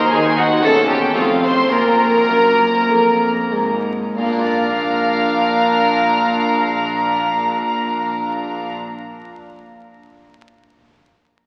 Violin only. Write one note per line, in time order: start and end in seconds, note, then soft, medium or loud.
0.00 0.11 A#4 medium
0.11 0.19 G#4 medium
0.38 0.46 F#4 medium
0.63 0.89 A4 loud
0.90 1.15 G4 medium
1.16 1.24 F4 medium
1.44 1.74 C5 loud
1.72 3.84 A#4 medium
4.18 8.72 A#4 medium